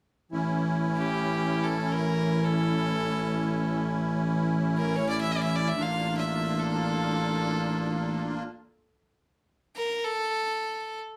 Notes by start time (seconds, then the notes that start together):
0.32 A1 E3 C#4 E4
0.97 G4
1.64 A4
1.92 A#4
2.44 A4
4.77 A#4
4.96 C#5
5.09 D5
5.21 E5
5.32 D5
5.43 E5
5.55 D5
5.67 E5
5.74 A1 A#3 D4 F4
5.82 F5
6.17 E5
6.60 A4
9.76 A#4
10.04 A4